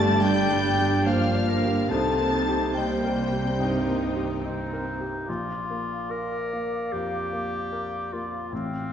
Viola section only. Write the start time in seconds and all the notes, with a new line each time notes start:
Already playing: G3 D4
1.05 A#3
1.90 C4 D#4
2.75 A#3
3.60 D#4
4.44 C4